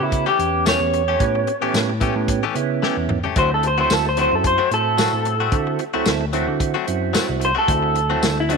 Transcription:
Already playing: B3 C#4 F#4
0.00 C#3 E4
0.12 muted clean electric guitar stroke, kick, closed hi-hat
0.26 E3 A3 C#4 G4
0.38 E2 B3 C#4 G4, muted clean electric guitar stroke, closed hi-hat
0.66 E3 A3 C#4 G4 C#5, snare, closed hi-hat, tambourine
0.81 E2, muted clean electric guitar stroke
0.93 muted clean electric guitar stroke, closed hi-hat
1.08 A3 C#4 G4
1.20 A2 B3 C#4 G4, kick, closed hi-hat
1.35 muted clean electric guitar stroke
1.47 muted clean electric guitar stroke, closed hi-hat
1.61 A2 E3 A3 B3 C#4 G4
1.74 A2, snare, closed hi-hat, tambourine
1.89 muted clean electric guitar stroke
2.01 E3 A3 B3 C#4 G4, kick, closed hi-hat
2.16 A2, muted clean electric guitar stroke
2.28 muted clean electric guitar stroke, kick, closed hi-hat
2.43 E3 A3 C#4 G4
2.54 C#3 B3 C#4 E4, closed hi-hat
2.83 E3 A3 C#4 G4, snare
2.97 E2, muted clean electric guitar stroke
3.09 muted clean electric guitar stroke, mid tom
3.23 A3 C#4 G4, floor tom
3.36 D2 F#3 A3 C4 E4 F#4 C5, kick, closed hi-hat
3.51 A4, muted clean electric guitar stroke
3.63 muted clean electric guitar stroke, closed hi-hat
3.67 C5
3.77 F#3 A3 C4 E4 F#4 C5
3.90 D2 A4, snare, closed hi-hat, tambourine
4.05 C5, muted clean electric guitar stroke
4.16 F#3 A3 C4 E4 F#4, closed hi-hat
4.21 C5
4.32 F#2 A4, muted clean electric guitar stroke
4.44 C5, muted clean electric guitar stroke, kick, closed hi-hat
4.58 F#3 A3 C4 F#4
4.71 A2 C4 E4 F#4 A4, muted clean electric guitar stroke, closed hi-hat
4.98 F#3 A3 C4 F#4, snare, closed hi-hat, tambourine
5.13 A2, muted clean electric guitar stroke
5.25 muted clean electric guitar stroke, closed hi-hat
5.40 A3 C4 F#4
5.52 D3 C4 E4 F#4, kick, closed hi-hat
5.67 muted clean electric guitar stroke
5.79 muted clean electric guitar stroke, closed hi-hat
5.93 D2 F#3 A3 C4 E4 F#4 A4
6.05 D2, snare, closed hi-hat, tambourine
6.21 muted clean electric guitar stroke
6.33 F#3 A3 C4 E4 F#4, closed hi-hat
6.47 D3, muted clean electric guitar stroke
6.60 muted clean electric guitar stroke, kick, closed hi-hat
6.74 F#3 A3 C4 F#4
6.87 F#2 C4 E4 F#4, muted clean electric guitar stroke, closed hi-hat
7.13 F#3 A3 C4 F#4, snare, closed hi-hat, tambourine
7.28 C2, muted clean electric guitar stroke
7.40 muted clean electric guitar stroke, closed hi-hat
7.45 C5
7.55 A3 C4 F#4 A4
7.68 D2 C4 E4 F#4, kick, closed hi-hat
7.83 muted clean electric guitar stroke
7.95 muted clean electric guitar stroke, closed hi-hat
8.09 F#3 A3 C4 E4 F#4 A4
8.23 D2, snare, closed hi-hat, tambourine
8.37 E4, muted clean electric guitar stroke
8.49 F#3 A3 C4 E4 F#4, closed hi-hat
8.53 D4

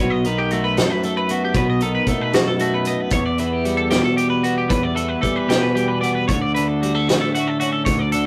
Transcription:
Already playing: B1 C#5
0.01 B2
0.10 D#5
0.25 D#3 B4, closed hi-hat
0.38 G4
0.51 A3 F#4, closed hi-hat
0.64 B4
0.77 F#2 A4, snare, closed hi-hat
0.90 B4
1.03 A3 A4, closed hi-hat
1.17 B4
1.29 B3 F#4, closed hi-hat
1.45 G4
1.54 B1 B2 B4, kick, closed hi-hat
1.70 D#5
1.81 D#3 A4, closed hi-hat
1.95 B4
2.07 B2 A3 A4, kick, closed hi-hat
2.21 B4
2.33 F#2 F#4, snare, closed hi-hat
2.48 A4
2.59 A3 F#4, closed hi-hat
2.74 B4
2.85 B3 D#5, closed hi-hat
3.00 B4
3.10 E2 C#5, kick, closed hi-hat
3.26 D5
3.38 E3 B4, closed hi-hat
3.52 G4
3.65 G3 F#4, closed hi-hat
3.77 A4
3.90 B2 G4, snare, closed hi-hat
4.04 A4
4.16 G3 G4, closed hi-hat
4.30 B4
4.43 B3 F#4, closed hi-hat
4.58 G4
4.69 E2 B4, kick, closed hi-hat
4.83 D5
4.95 E3 A4, closed hi-hat
5.08 B4
5.22 E3 G3 A4, kick, closed hi-hat
5.36 B4
5.48 B2 G4, snare, closed hi-hat
5.62 B4
5.75 G3 G4, closed hi-hat
5.88 B4
6.01 B3 D5, closed hi-hat
6.15 B4
6.28 D2 C#5, kick, closed hi-hat
6.42 D5
6.55 D3 B4, closed hi-hat
6.68 A4
6.81 G3 F#4, closed hi-hat
6.95 A3 A4
7.08 A2 F#4, snare, closed hi-hat
7.21 A4
7.35 A3 F#4, closed hi-hat
7.48 A4
7.60 C#4 F#4, closed hi-hat
7.72 A4
7.85 D2 C#5, kick, closed hi-hat
7.99 D5
8.12 D3 A4, closed hi-hat

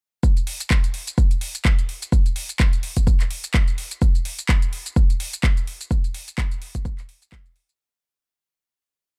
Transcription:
0.23 kick, shaker
0.37 closed hi-hat, shaker
0.47 open hi-hat
0.60 closed hi-hat, shaker
0.71 kick, clap, shaker
0.84 closed hi-hat, shaker
0.94 open hi-hat
1.07 closed hi-hat, shaker
1.18 kick, shaker
1.31 closed hi-hat, shaker
1.41 open hi-hat
1.55 closed hi-hat, shaker
1.65 kick, clap, shaker
1.79 closed hi-hat, shaker
1.89 open hi-hat
2.02 closed hi-hat, shaker
2.12 kick, shaker
2.26 closed hi-hat, shaker
2.36 open hi-hat
2.49 closed hi-hat, shaker
2.60 kick, clap, shaker
2.73 closed hi-hat, shaker
2.83 open hi-hat
2.97 kick, closed hi-hat, shaker
3.07 kick, shaker
3.20 clap, closed hi-hat, shaker
3.31 open hi-hat
3.44 closed hi-hat, shaker
3.54 kick, clap, shaker
3.68 closed hi-hat, shaker
3.78 open hi-hat
3.91 closed hi-hat, shaker
4.02 kick, shaker
4.15 closed hi-hat, shaker
4.25 open hi-hat
4.39 closed hi-hat, shaker
4.49 kick, clap, shaker
4.62 closed hi-hat, shaker
4.73 open hi-hat
4.86 closed hi-hat, shaker
4.96 kick, shaker
5.10 closed hi-hat, shaker
5.20 open hi-hat
5.33 closed hi-hat, shaker
5.43 kick, clap, shaker
5.57 closed hi-hat, shaker
5.67 open hi-hat
5.81 closed hi-hat, shaker
5.91 kick, shaker
6.04 closed hi-hat, shaker
6.14 open hi-hat
6.28 closed hi-hat, shaker
6.38 kick, clap, shaker
6.51 closed hi-hat, shaker
6.62 open hi-hat
6.75 kick, closed hi-hat, shaker
6.85 kick, shaker
6.98 clap, closed hi-hat, shaker
7.09 open hi-hat
7.22 closed hi-hat, shaker
7.32 kick, clap, shaker
7.46 closed hi-hat, shaker
7.56 open hi-hat
7.69 closed hi-hat, shaker

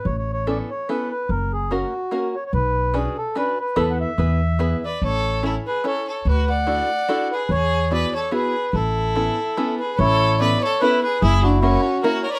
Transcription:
0.05 A1 C#5
0.18 C#5
0.33 C#5
0.47 B3 C#4 E4 A4 D5
0.70 C#5
0.89 B3 C#4 E4 A4 B4
1.11 B4
1.29 F#1 A#4
1.53 G#4
1.71 A#3 C#4 F#4 A#4
2.11 A#3 C#4 F#4 A#4
2.35 C#5
2.46 C#5
2.53 B1 B4
2.94 C#4 D4 F#4 G#4 B4
3.18 A4
3.35 C#4 D4 F#4 B4
3.60 B4
3.76 E2 B3 E4 A4 B4
3.90 F#5
4.01 E5
4.18 E2 B3 E4 G#4 B4
4.59 B3 E4 G#4 B4
4.85 B4 D5
5.02 A1 A4 C#5
5.43 C#4 E4 A4 C#5
5.67 G#4 B4
5.84 C#4 E4 A4 C#5
6.07 A4 C#5
6.25 D2 F#4 B4
6.49 D5 F#5
6.67 D4 E4 F#4 A4
7.08 D4 E4 F#4 A4
7.32 G#4 B4
7.49 E2 C#5
7.53 G#4
7.91 B3 E4 F#4 G#4 B4 D5
8.14 A4 C#5
8.31 B3 E4 F#4 G#4 B4
8.73 A1 E4 A4
9.15 B3 C#4 E4 A4
9.57 B3 C#4 E4 A4
9.79 G#4 B4
9.99 A1 E4 A4 C#5
10.39 B3 C#4 E4 A4 B4 D5
10.62 A4 C#5
10.81 B3 C#4 E4 A4 B4
11.02 G#4 B4
11.21 F#1 E4 G#4
11.42 D4 F#4
11.62 A#3 C#4 E4 F#4 A#4
12.02 A#3 C#4 E4 F#4 A#4
12.23 A#4 C#5
12.29 B4 D5
12.33 A#4 C#5

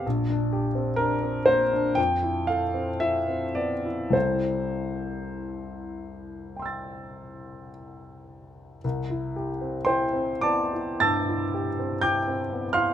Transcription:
0.06 A#1
0.30 D4
0.53 G4
0.75 C4
0.96 D4 A#4
1.23 C4
1.46 A#3 C5
1.73 D4
1.95 F2 G5
2.23 E4
2.47 A4 F5
2.74 C4
3.00 E4 E5
3.28 C4
3.55 B3 D5
3.85 E4
4.09 C2 G3 C4 E4 C5
4.14 A4
6.56 G5 C6
6.62 E6 A6
8.84 C2
9.10 E4
9.36 G4
9.61 C4
9.85 E4 C5 G5 C6
10.13 C4
10.41 B3 D5 A5 D6
10.73 E4
11.00 G2 A5 E6 A6
11.29 E4
11.54 G4
11.79 C4
12.01 E4 G5 D6 G6
12.28 C4
12.52 B3
12.73 E4 F5 C6 F6

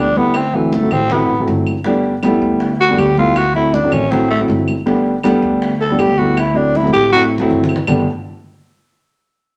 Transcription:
Already playing: D2
0.00 D4
0.16 G3 A3 B3 E4, high bongo, high conga
0.34 C4, high bongo, high conga, claves
0.53 E3 F#3 A3 C4 E4, high bongo, high conga
0.72 A3, high bongo, high conga
0.82 F#3 A3 C4 E4
0.91 A1 C4, high conga, low conga, claves
1.10 F#3 A3 B3 C4 E4, high bongo, high conga, low conga
1.29 A1, high bongo, high conga
1.40 F#3 A3 C4 E4
1.47 G1, high bongo, low bongo, high conga
1.66 high bongo, high conga, claves
1.84 G3 A3 B3 D4, high bongo, high conga
2.03 high bongo, high conga
2.23 G3 A3 B3 E4, high bongo, high conga, claves
2.41 D2, high conga
2.60 high bongo, high conga
2.79 F#4, high bongo, high conga
2.89 G3 A3 B3 D4
2.97 D2 G4, high bongo, low bongo, high conga, claves
3.17 G3 A3 B3 E4 F4, high bongo, high conga
3.36 F#4, high bongo, claves
3.54 F#3 A3 C4 E4, high bongo, high conga
3.74 D4, high bongo, high conga
3.83 F#3 A3 C4 D4
3.91 A1 C#4, high conga, low conga, claves
4.11 F#3 A3 C4 E4, high bongo, high conga, low conga
4.31 A3, high bongo
4.40 F#3 A3 C4 E4
4.48 G1, high bongo, low bongo, high conga
4.68 high bongo, high conga, claves
4.86 G3 A3 B3 D4, high bongo, high conga
5.06 high bongo, high conga
5.23 G3 A3 B3 D4, high bongo, high conga, claves
5.42 D2, high conga
5.62 high bongo, high conga
5.81 A4, high bongo, high conga
5.90 G3 A3 B3 D4
5.99 D2 G4, high bongo, low bongo, high conga, claves
6.17 G3 A3 B3 E4 F#4, high bongo, high conga
6.37 E4, high bongo, high conga, claves
6.54 F#3 A3 C4 D4 E4, high bongo, high conga
6.75 E4, high bongo, high conga
6.82 F#3 A3 C4 E4
6.87 high conga
6.93 A1 G4, claves
7.12 F#3 A3 C4 E4 F#4, high bongo
7.32 high bongo
7.38 F#3 A3 C4 E4, low conga
7.50 G1, high bongo, low bongo, low conga
7.64 low conga
7.69 high bongo, claves
7.76 low conga
7.87 G1 G3 A3 B3 D4, low bongo, low conga, claves

